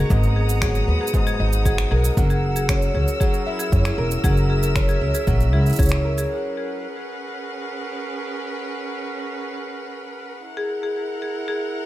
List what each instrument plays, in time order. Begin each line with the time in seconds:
Already playing: twelve-string acoustic guitar F#3 B3 D#4 A#4, string quartet B3 F#5 A#5
0.10 upright bass G#1, twelve-string acoustic guitar G#2, string quartet D#6, kick, cabasa
0.23 cabasa
0.36 marimba G#4
0.49 cabasa
0.62 twelve-string acoustic guitar F#3, marimba G#4, finger snap, kick, cabasa
0.75 cabasa
0.88 upright bass D#2, twelve-string acoustic guitar B3
1.01 marimba G#4
1.07 cabasa
1.14 twelve-string acoustic guitar G#2, kick, cabasa
1.27 marimba G#4, cabasa
1.40 upright bass G#1, twelve-string acoustic guitar D#4
1.53 cabasa
1.66 twelve-string acoustic guitar F#3, marimba G#4, kick, cabasa
1.78 finger snap, cabasa
1.91 upright bass B1, marimba G#4, twelve-string acoustic guitar A#4
2.04 cabasa
2.17 upright bass F#1, twelve-string acoustic guitar F#3, string quartet A#4 E6, kick, cabasa
2.30 marimba G#4, cabasa
2.56 marimba G#4, cabasa
2.69 twelve-string acoustic guitar C#4, finger snap, kick, cabasa
2.82 cabasa
2.94 upright bass C#2, twelve-string acoustic guitar C#4, marimba G#4
3.08 cabasa
3.20 twelve-string acoustic guitar F#3, marimba G#4, kick, cabasa
3.34 cabasa
3.47 twelve-string acoustic guitar E4
3.59 marimba G#4, cabasa
3.72 upright bass F#2, twelve-string acoustic guitar C#4, kick, cabasa
3.85 marimba G#4, finger snap, cabasa
3.98 upright bass E1, twelve-string acoustic guitar A#4
4.11 cabasa
4.23 upright bass F#1, twelve-string acoustic guitar F#3, marimba G#4, string quartet E5, kick, cabasa
4.37 cabasa
4.50 marimba G#4
4.63 cabasa
4.76 twelve-string acoustic guitar C#4, finger snap, kick, cabasa
4.89 marimba G#4, cabasa
5.01 upright bass C#2, twelve-string acoustic guitar C#4
5.14 marimba G#4, cabasa
5.27 upright bass A#1, twelve-string acoustic guitar F#3, kick, cabasa
5.40 cabasa
5.53 upright bass C#2, twelve-string acoustic guitar E4, marimba G#4
5.66 cabasa
5.69 cabasa
5.73 cabasa
5.76 upright bass C#2, twelve-string acoustic guitar C#4, marimba G#4, cabasa
5.79 kick, cabasa
5.82 cabasa
5.85 cabasa
5.89 finger snap, cabasa
6.05 twelve-string acoustic guitar A#4
6.18 marimba G#4, cabasa
6.31 string quartet C#4 G#4 A#4 B4 F#5
10.45 string quartet E4 A#4 F#5
10.57 marimba G#4
10.83 marimba G#4
11.22 marimba G#4
11.48 marimba G#4